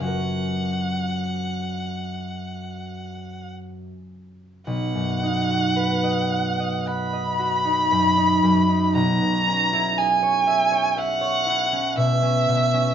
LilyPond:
<<
  \new Staff \with { instrumentName = "Violin" } { \time 4/4 \key fis \major \tempo 4 = 56 fis''2. r4 | \key b \major fis''2 b''2 | ais''4 gis''4 fis''4 e''4 | }
  \new Staff \with { instrumentName = "Harp" } { \time 4/4 \key fis \major << { <fis, cis' fis' ais'>1~ | \key b \major <fis, cis' fis' ais'>1 | r1 | } \\ { r1 | b,,16 fis,16 dis'16 fis'16 b'16 dis''16 fis''16 dis''16 fis''16 dis''16 fis'16 dis'16 fis,16 dis'16 fis,16 dis'16 | b,,16 b,16 cis'16 e'16 gis'16 cis''16 e''16 cis''16 e''16 cis''16 e'16 cis'16 b,16 cis'16 b,16 cis'16 | } >> }
>>